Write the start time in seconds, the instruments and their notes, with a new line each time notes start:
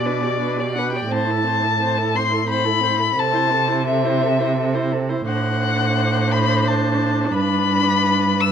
Already playing: cello B2, violin D5
0.05 viola D4, violin B4
0.22 viola G4, violin D5
0.40 viola D4, violin B4
0.57 viola G4, violin D5
0.75 viola D4, violin B4 F#5
0.91 viola G4, violin G5
0.96 violin D5
1.09 cello A2, viola C4, violin C5 A5
1.26 viola E4
1.31 violin A4
1.44 viola C4, violin C5
1.62 viola E4, violin A4
1.80 viola C4, violin C5
1.98 viola E4, violin A4
2.14 viola C4, violin C5 C6
2.30 viola E4, violin A4
2.47 viola C4, violin C5 B5
2.64 viola E4, violin A4
2.80 viola C4, violin C5
2.97 viola E4, violin A4
3.14 cello C3, viola C4, violin A4
3.18 violin A5
3.32 viola E4, violin C5
3.50 viola C4, violin A4
3.67 viola E4, violin C5
3.86 viola C4, violin A4 E5
4.04 viola E4, violin C5
4.21 viola C4, violin A4
4.39 viola E4, violin C5
4.57 viola C4, violin A4
4.74 viola E4, violin C5
4.92 viola C4, violin A4
5.09 viola E4, violin C5
5.26 cello A2, viola D4, violin C5 F#5
6.31 violin B5
6.67 violin A5
7.34 cello G2, violin B4 B5
8.40 violin E6